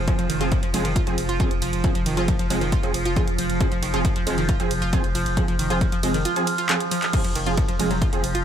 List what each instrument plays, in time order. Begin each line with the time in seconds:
Already playing: synth drone F3
0.08 synth stab F3 C4 G#4, synth arpeggio sound F3, kick, closed hi-hat
0.19 sub bass F1, synth arpeggio sound F3, closed hi-hat
0.30 sub bass F1, synth arpeggio sound D#3, open hi-hat, ride
0.41 sub bass F1, synth stab F3 C4 G#4, synth arpeggio sound F4, closed hi-hat
0.52 synth arpeggio sound F3, kick, closed hi-hat
0.63 sub bass F1, synth arpeggio sound F3, closed hi-hat
0.74 sub bass F1, synth stab F3 C4 G#4, synth arpeggio sound G#3, open hi-hat, ride
0.85 sub bass F1, synth arpeggio sound D#3, closed hi-hat
0.96 synth arpeggio sound F4, kick, closed hi-hat
1.07 sub bass F1, synth stab F3 C4 G#4, closed hi-hat
1.18 sub bass F1, open hi-hat, ride
1.29 sub bass F1, synth arpeggio sound F4, closed hi-hat
1.40 synth stab F3 C4 G#4, synth arpeggio sound F4, kick, closed hi-hat
1.51 sub bass F1, closed hi-hat
1.62 sub bass F1, synth arpeggio sound F3, open hi-hat, ride
1.73 sub bass F1, closed hi-hat
1.84 synth arpeggio sound F3, synth stab F3 C4 G#4, kick, closed hi-hat
1.95 sub bass F1, synth arpeggio sound F3, closed hi-hat
2.06 sub bass F1, synth arpeggio sound D#3, open hi-hat, ride
2.17 sub bass F1, synth stab F3 C4 G#4, synth arpeggio sound F4, closed hi-hat
2.28 synth arpeggio sound F3, kick, closed hi-hat
2.39 sub bass F1, synth arpeggio sound F3, closed hi-hat
2.50 sub bass F1, synth stab F3 C4 G#4, synth arpeggio sound G#3, open hi-hat, ride
2.61 sub bass F1, synth arpeggio sound D#3, closed hi-hat
2.72 synth arpeggio sound F4, kick, closed hi-hat
2.83 sub bass F1, synth stab F3 C4 G#4, closed hi-hat
2.94 sub bass F1, open hi-hat, ride
3.05 sub bass F1, synth arpeggio sound F4, closed hi-hat
3.16 synth stab F3 C4 G#4, synth arpeggio sound F4, kick, closed hi-hat
3.28 sub bass F1, closed hi-hat
3.38 sub bass F1, synth arpeggio sound F3, open hi-hat, ride
3.50 sub bass F1, closed hi-hat
3.61 synth stab F3 C4 G#4, synth arpeggio sound F3, kick, closed hi-hat
3.72 sub bass F1, synth arpeggio sound F3, closed hi-hat
3.83 sub bass F1, synth arpeggio sound D#3, open hi-hat, ride
3.94 sub bass F1, synth stab F3 C4 G#4, synth arpeggio sound F4, closed hi-hat
4.05 synth arpeggio sound F3, kick, closed hi-hat
4.16 sub bass F1, synth arpeggio sound F3, closed hi-hat
4.27 sub bass F1, synth stab F3 C4 G#4, synth arpeggio sound G#3, open hi-hat, ride
4.38 sub bass F1, synth arpeggio sound D#3, closed hi-hat
4.49 synth arpeggio sound F4, kick, closed hi-hat
4.60 sub bass F1, synth stab F3 C4 G#4, closed hi-hat
4.71 sub bass F1, open hi-hat, ride
4.82 sub bass F1, synth arpeggio sound F4, closed hi-hat
4.93 synth stab F3 C4 G#4, synth arpeggio sound F4, kick, closed hi-hat
5.04 sub bass F1, closed hi-hat
5.15 sub bass F1, synth arpeggio sound F3, open hi-hat, ride
5.26 sub bass F1, closed hi-hat
5.37 synth arpeggio sound F3, synth stab F3 C4 G#4, kick, closed hi-hat
5.48 sub bass F1, synth arpeggio sound F3, closed hi-hat
5.59 sub bass F1, synth arpeggio sound D#3, open hi-hat, ride
5.70 sub bass F1, synth stab F3 C4 G#4, synth arpeggio sound F4, closed hi-hat
5.81 synth arpeggio sound F3, kick, closed hi-hat
5.92 sub bass F1, synth arpeggio sound F3, closed hi-hat
6.03 sub bass F1, synth stab F3 C4 G#4, synth arpeggio sound G#3, open hi-hat, ride
6.14 sub bass F1, synth arpeggio sound D#3, closed hi-hat
6.25 synth arpeggio sound F4, closed hi-hat
6.36 synth stab F3 C4 G#4, closed hi-hat
6.47 open hi-hat, ride
6.58 synth arpeggio sound F4, closed hi-hat
6.69 synth stab F3 C4 G#4, synth arpeggio sound F4, clap, closed hi-hat
6.80 closed hi-hat
6.91 synth arpeggio sound F3, open hi-hat, ride
7.03 clap, closed hi-hat
7.13 synth drone F3, synth arpeggio sound F3, synth stab F3 C4 G#4, kick, closed hi-hat, crash
7.24 sub bass F1, synth arpeggio sound F3, closed hi-hat
7.35 sub bass F1, synth arpeggio sound D#3, open hi-hat, ride
7.46 sub bass F1, synth stab F3 C4 G#4, synth arpeggio sound F4, closed hi-hat
7.57 synth arpeggio sound F3, kick, closed hi-hat
7.68 sub bass F1, synth arpeggio sound F3, closed hi-hat
7.79 sub bass F1, synth stab F3 C4 G#4, synth arpeggio sound G#3, open hi-hat, ride
7.90 sub bass F1, synth arpeggio sound F#3, closed hi-hat
8.02 synth arpeggio sound F4, kick, closed hi-hat
8.13 sub bass F1, synth stab F3 C4 G#4, closed hi-hat
8.24 sub bass F1, open hi-hat, ride
8.35 sub bass F1, synth arpeggio sound F4, closed hi-hat